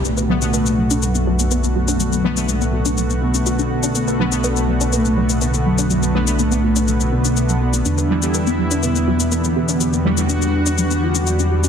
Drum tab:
SH |xx-xxx-xxx-xxx-x|xx-xxx-xxx-xxx-x|xx-xxx-xxx-xxx-x|xx-xxx-xxx-xxx-x|

SH |xx-xxx-xxx-xxx-x|xx-xxx-xxx-xxx-x|